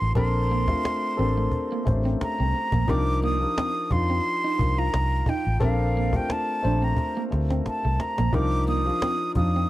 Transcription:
Already playing: upright piano F3 D4 D#4 A#4, flute C6
0.02 fingered electric bass A1
0.15 fingered electric bass A#1, upright piano C4 D4 A4 A#4, clean electric guitar C4, flute C6, cajon bass
0.51 clean electric guitar A#3
0.68 upright piano A3 C4 D4 F4, cajon bass
0.85 muted clean electric guitar stroke, cajon slap
1.17 fingered electric bass A1, upright piano C4 D4 A4 A#4, clean electric guitar C4, cajon slap
1.38 clean electric guitar A3
1.51 cajon bass
1.72 clean electric guitar A#3
1.85 fingered electric bass A1, upright piano A3 C4 C#4 C5, muted clean electric guitar stroke, cajon bass
1.93 upright piano D4
2.05 clean electric guitar C4
2.21 flute A#5, muted fingered electric bass stroke, cajon slap
2.40 fingered electric bass C2, clean electric guitar C4
2.54 muted clean electric guitar stroke, cajon slap
2.72 fingered electric bass A#1, clean electric guitar A#3, cajon bass
2.87 fingered electric bass C2, upright piano F3 D4 D#4 A#4, clean electric guitar C4, flute D6, cajon bass
3.23 clean electric guitar A#3, flute D#6, cajon slap
3.40 upright piano F3 D4 D#4 A#4
3.58 clean electric guitar C4, cajon slap
3.90 fingered electric bass F2, upright piano F3 D4 D#4 F4, flute C6, muted clean electric guitar stroke, cajon bass
4.10 clean electric guitar C4
4.25 cajon slap
4.44 clean electric guitar D#4
4.58 fingered electric bass C2, upright piano F3 D4 D#4 A#4, muted clean electric guitar stroke, cajon bass
4.78 clean electric guitar F4, flute A#5
4.94 fingered electric bass C2, cajon slap
5.26 clean electric guitar D#4, flute G5, cajon bass
5.47 fingered electric bass A1
5.60 fingered electric bass A#1, upright piano C4 D4 A4 A#4, clean electric guitar C4, flute F5, cajon bass
5.95 clean electric guitar A#3, cajon slap
6.13 upright piano A3 C4 D4 F4, flute G5, cajon bass
6.30 flute A5, muted clean electric guitar stroke, cajon slap
6.62 fingered electric bass A#1, upright piano A3 C4 D4 C5, clean electric guitar D4, cajon slap
6.82 clean electric guitar C4, flute A#5
6.97 cajon bass, cajon slap
7.17 clean electric guitar A#3
7.31 fingered electric bass D2, upright piano A3 C4 D4 C5, muted clean electric guitar stroke, cajon slap
7.50 clean electric guitar C4, cajon slap
7.66 flute A5, muted fingered electric bass stroke, cajon slap
7.85 fingered electric bass C2, clean electric guitar A3
8.00 flute A#5, muted clean electric guitar stroke, cajon slap
8.18 fingered electric bass A#1, clean electric guitar A#3, cajon slap
8.33 fingered electric bass C2, upright piano F3 D4 D#4 A#4, clean electric guitar C4, flute D6, cajon bass
8.68 clean electric guitar A#3, flute D#6
8.85 upright piano F3 D4 D#4 F4
9.02 clean electric guitar C4, cajon slap
9.35 fingered electric bass F2, upright piano F3 D4 D#4 F4, flute D#6, muted clean electric guitar stroke, cajon bass
9.56 clean electric guitar C4

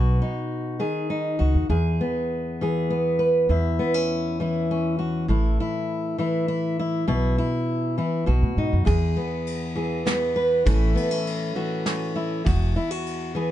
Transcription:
Already playing: upright bass B1, steel-string acoustic guitar B2 F#4
0.22 steel-string acoustic guitar D#4
0.80 steel-string acoustic guitar D#3 G#4
1.10 steel-string acoustic guitar D#4
1.39 upright bass C#2, steel-string acoustic guitar F#4
1.55 upright bass D#2
1.70 upright bass E2, steel-string acoustic guitar E2 G#4
2.01 steel-string acoustic guitar B3
2.61 steel-string acoustic guitar E3 G#4
2.90 steel-string acoustic guitar B3
3.19 steel-string acoustic guitar B4
3.49 upright bass E2, steel-string acoustic guitar E2 E4
3.79 steel-string acoustic guitar B3
3.94 steel-string acoustic guitar C#4
4.40 steel-string acoustic guitar E3 E4
4.71 steel-string acoustic guitar C#4
4.99 steel-string acoustic guitar F#4
5.28 upright bass A1, steel-string acoustic guitar A2 E4
5.60 steel-string acoustic guitar E4
6.18 steel-string acoustic guitar E3 E4
6.48 steel-string acoustic guitar E4
6.79 steel-string acoustic guitar E4
7.08 upright bass B1, steel-string acoustic guitar B2 E4
7.38 steel-string acoustic guitar E4
7.98 steel-string acoustic guitar E3 E4
8.26 upright bass B1, steel-string acoustic guitar B2 F#4
8.43 upright bass A2
8.57 upright bass G#2, steel-string acoustic guitar D#4
8.73 upright bass F#2
8.85 steel-string acoustic guitar E2 G#4, upright bass E2, kick, ride
9.17 steel-string acoustic guitar B3
9.47 ride
9.75 steel-string acoustic guitar E3 G#4
10.06 steel-string acoustic guitar B3, snare, ride
10.36 steel-string acoustic guitar B4
10.65 upright bass A1, steel-string acoustic guitar A2 E3 A3 C#4 E4, kick, ride
10.96 steel-string acoustic guitar B3, ride
11.11 steel-string acoustic guitar C#4
11.27 ride
11.55 steel-string acoustic guitar E3 F#4
11.86 steel-string acoustic guitar C#4, snare, ride
12.16 steel-string acoustic guitar E4
12.45 upright bass E1, steel-string acoustic guitar E2 F#4, kick, ride
12.76 steel-string acoustic guitar E4
12.91 steel-string acoustic guitar F#4
13.07 ride
13.35 steel-string acoustic guitar E3 G#4

